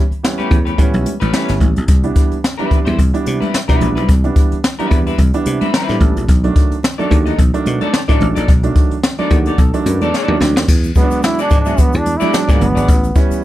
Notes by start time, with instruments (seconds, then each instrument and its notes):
0.11 muted slap bass stroke, closed hi-hat
0.23 upright piano E3 G3 B3 C#4, snare
0.38 clean electric guitar A3 C#4 G4 B4, closed hi-hat, high conga
0.51 slap bass E2, kick, closed hi-hat, low conga
0.65 clean electric guitar A3 C#4 G4 B4, closed hi-hat
0.78 slap bass A2, upright piano E3 G3 B3 C#4, kick, closed hi-hat, muted conga, low conga
0.94 slap bass B1, closed hi-hat, muted conga
1.06 closed hi-hat, high conga
1.20 slap bass A1, clean electric guitar A3 C#4 G4 B4, closed hi-hat, high conga
1.32 upright piano E3 G3 B3 C#4, clean electric guitar A3 C#4 G4 B4, snare, muted conga
1.48 slap bass G1, snare, closed hi-hat, muted conga
1.60 slap bass A1, kick, closed hi-hat, high conga, low conga
1.76 slap bass B1, closed hi-hat
1.88 slap bass C2, kick, closed hi-hat, muted conga
2.03 upright piano E3 G3 B3 D4, closed hi-hat, muted conga
2.15 kick, closed hi-hat
2.31 muted slap bass stroke, closed hi-hat
2.44 snare
2.58 upright piano E3 G3 B3 D4, clean electric guitar G3 C4 E4 B4, closed hi-hat, high conga
2.71 muted slap bass stroke, kick, closed hi-hat, low conga
2.85 slap bass E2, clean electric guitar G3 C4 E4 C5, closed hi-hat
2.99 slap bass C2, kick, closed hi-hat, muted conga, low conga
3.13 upright piano E3 G3 B3 D4, closed hi-hat, muted conga
3.26 slap bass C3, closed hi-hat, high conga
3.40 clean electric guitar G3 C4 E4 B4, closed hi-hat, high conga
3.54 snare, muted conga
3.68 slap bass B2, upright piano E3 G3 B3 D4, clean electric guitar G3 C4 E4 B4, kick, snare, closed hi-hat
3.81 slap bass A#1, closed hi-hat, high conga, low conga
3.95 slap bass B1, clean electric guitar G3 C4 E4 B4, closed hi-hat
4.08 slap bass C2, kick, closed hi-hat
4.24 upright piano E3 G3 B3 D4, closed hi-hat, muted conga
4.36 kick, closed hi-hat
4.52 muted slap bass stroke, closed hi-hat
4.64 snare, muted conga
4.79 upright piano E3 G3 B3 D4, clean electric guitar G3 C4 E4 B4, closed hi-hat, high conga
4.91 slap bass E2, kick, closed hi-hat, low conga
5.06 clean electric guitar G3 C4 E4 B4, closed hi-hat
5.18 slap bass C2, kick, closed hi-hat, low conga
5.34 upright piano E3 G3 B3 D4, closed hi-hat, muted conga
5.46 slap bass C3, closed hi-hat, high conga
5.61 clean electric guitar G3 C4 E4 B4, closed hi-hat, high conga
5.74 clean electric guitar G3 C4 E4 B4, upright piano C5, snare, muted conga
5.88 slap bass A2, upright piano E3 G3 B3 D4, snare, closed hi-hat, muted conga
6.01 slap bass A1, upright piano A4, kick, closed hi-hat, high conga, low conga
6.17 slap bass A#1, closed hi-hat
6.28 slap bass B1, kick, closed hi-hat
6.44 upright piano D#3 F#3 A3 D4, closed hi-hat
6.56 kick, closed hi-hat
6.71 muted slap bass stroke, closed hi-hat
6.83 snare, muted conga
6.98 upright piano D#3 F#3 A3 D4, clean electric guitar B3 D#4 A4 D5, closed hi-hat, muted conga, high conga
7.11 slap bass D#2, kick, closed hi-hat, low conga
7.26 clean electric guitar B3 D#4 A4 D#5, closed hi-hat
7.38 slap bass B1, kick, closed hi-hat, low conga
7.54 upright piano D#3 F#3 A3 D4, closed hi-hat
7.66 slap bass B2, closed hi-hat, high conga
7.81 clean electric guitar B3 D#4 A4 D5, closed hi-hat, high conga
7.93 snare, muted conga
8.08 slap bass A2, upright piano D#3 F#3 A3 D4, clean electric guitar B3 D#4 A4 D5, kick, closed hi-hat
8.21 slap bass A1, closed hi-hat, high conga, low conga
8.35 slap bass A#1, clean electric guitar B3 D#4 A4 D5, closed hi-hat
8.48 slap bass B1, kick, closed hi-hat, muted conga
8.63 upright piano D#3 F#3 A3 D4, closed hi-hat, muted conga
8.76 kick, closed hi-hat
8.91 muted slap bass stroke, closed hi-hat
9.03 snare
9.18 upright piano D#3 F#3 A3 D4, clean electric guitar B3 D#4 A4 D5, closed hi-hat, muted conga, high conga
9.31 slap bass D#2, upright piano F#4, kick, closed hi-hat, low conga
9.46 clean electric guitar B3 D#4 A4 D5, closed hi-hat
9.58 slap bass B1, upright piano A4, kick, closed hi-hat, muted conga, low conga
9.74 upright piano D#3 F#3 A3 D4, closed hi-hat, muted conga
9.86 slap bass F#2, upright piano B4, closed hi-hat, high conga
10.01 slap bass E2, clean electric guitar B3 D#4 A4 D5, closed hi-hat, high conga
10.14 clean electric guitar B3 D#4 A4 D5, upright piano C#5, snare
10.28 slap bass D#2, upright piano D#3 F#3 A3 D4, muted conga
10.40 slap bass D2, upright piano D5, snare, high conga, low conga
10.56 slap bass D#2, snare
10.68 slap bass E2, kick, crash, muted conga, shaker
10.83 closed hi-hat, muted conga, shaker
10.95 upright piano F#3 G#3 B3 C#4, trombone B3, kick, closed hi-hat, shaker
11.03 upright piano D4
11.11 muted slap bass stroke, closed hi-hat, shaker
11.23 trombone E4, snare, shaker
11.38 clean electric guitar B3 F#4 G#4 D5, closed hi-hat, shaker
11.43 trombone D4
11.50 slap bass G#2, kick, closed hi-hat, low conga, shaker
11.61 trombone D4
11.65 upright piano F#3 G#3 B3 D4, clean electric guitar B3 F#4 G#4 E5, closed hi-hat, shaker
11.78 trombone B3, muted slap bass stroke, kick, closed hi-hat, muted conga, low conga, shaker
11.93 slap bass E2, closed hi-hat, shaker
11.98 trombone D4
12.06 closed hi-hat, high conga
12.17 clean electric guitar B3 F#4 G#4 D5, trombone E4, closed hi-hat, shaker
12.21 upright piano F#3 G#3 B3 D4, high conga
12.33 upright piano F#3 G#3 B3 D4, trombone D4, snare, muted conga, shaker
12.48 slap bass G#2, clean electric guitar B3 F#4 G#4 D5, kick, closed hi-hat, shaker
12.53 trombone B3
12.61 slap bass G1, closed hi-hat, high conga, low conga
12.75 slap bass G#1, clean electric guitar B3 F#4 G#4 D5, closed hi-hat, shaker
12.88 slap bass A1, kick, closed hi-hat, muted conga, shaker
13.03 closed hi-hat, muted conga, shaker
13.15 upright piano E3 G3 B3 C#4, kick, closed hi-hat, shaker
13.31 muted slap bass stroke, closed hi-hat, shaker